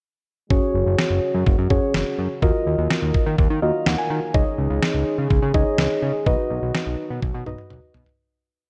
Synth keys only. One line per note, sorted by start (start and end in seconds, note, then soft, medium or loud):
0.50 1.30 C#4 medium
0.50 1.30 F#4 medium
0.50 1.30 G#4 medium
0.50 1.30 C#5 medium
1.70 2.30 C#4 medium
1.70 2.30 F#4 medium
1.70 2.30 G#4 medium
1.70 2.30 C#5 medium
2.42 3.22 F4 medium
2.42 3.22 F#4 medium
2.42 3.22 A#4 medium
2.42 3.22 D#5 medium
3.62 4.22 F4 medium
3.62 4.22 F#4 medium
3.62 4.22 A#4 medium
3.62 3.85 D#5 medium
3.86 3.98 F#5 medium
3.98 4.32 G#5 medium
4.34 5.14 D#4 medium
4.34 5.14 G#4 medium
4.34 5.14 C#5 medium
4.34 5.14 D#5 medium
5.54 6.14 D#4 medium
5.54 6.14 G#4 medium
5.54 6.14 C#5 medium
5.54 6.14 D#5 medium
6.26 7.06 D#4 medium
6.26 7.06 F#4 medium
6.26 7.06 B4 medium
6.26 7.06 D#5 medium
7.46 8.06 D#4 medium
7.46 8.06 F#4 medium
7.46 8.06 B4 medium
7.46 8.06 D#5 medium